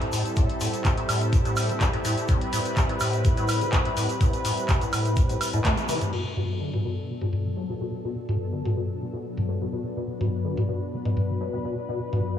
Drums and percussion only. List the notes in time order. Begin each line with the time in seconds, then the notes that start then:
0.02 closed hi-hat
0.12 open hi-hat, shaker
0.26 closed hi-hat, shaker
0.36 kick, closed hi-hat, shaker
0.49 closed hi-hat
0.60 open hi-hat, shaker
0.73 closed hi-hat, shaker
0.85 kick, clap, closed hi-hat, shaker
0.97 closed hi-hat
1.09 open hi-hat, high woodblock, shaker
1.21 closed hi-hat, shaker
1.33 kick, closed hi-hat, shaker
1.45 closed hi-hat, shaker
1.56 open hi-hat, high woodblock, shaker
1.69 closed hi-hat, shaker
1.81 kick, clap, closed hi-hat, shaker
1.93 closed hi-hat
2.05 open hi-hat, shaker
2.17 closed hi-hat, shaker
2.28 kick, closed hi-hat, shaker
2.41 closed hi-hat
2.53 open hi-hat, shaker
2.65 closed hi-hat, shaker
2.77 kick, clap, closed hi-hat, shaker
2.89 closed hi-hat
3.00 open hi-hat, high woodblock, shaker
3.13 closed hi-hat, shaker
3.25 kick, closed hi-hat, shaker
3.37 closed hi-hat, shaker
3.48 open hi-hat, high woodblock, shaker
3.61 closed hi-hat, shaker
3.73 kick, clap, closed hi-hat, shaker
3.85 closed hi-hat
3.97 open hi-hat, shaker
4.09 closed hi-hat, shaker
4.21 kick, closed hi-hat, shaker
4.33 closed hi-hat, shaker
4.45 open hi-hat, shaker
4.57 closed hi-hat, shaker
4.69 kick, clap, closed hi-hat, shaker
4.81 closed hi-hat, shaker
4.93 open hi-hat, high woodblock, shaker
5.05 closed hi-hat, shaker
5.16 kick, closed hi-hat, shaker
5.29 closed hi-hat, shaker
5.41 open hi-hat, high woodblock, shaker
5.53 closed hi-hat, shaker
5.65 kick, clap, closed hi-hat, shaker
5.77 closed hi-hat, high tom, shaker
5.89 open hi-hat, mid tom, shaker
6.01 closed hi-hat, mid tom, shaker
6.13 crash
6.37 mid tom
6.73 mid tom
7.21 mid tom
7.33 mid tom
8.29 mid tom
8.65 mid tom
9.37 mid tom
10.21 mid tom
10.57 mid tom
11.05 mid tom
11.17 mid tom
12.13 mid tom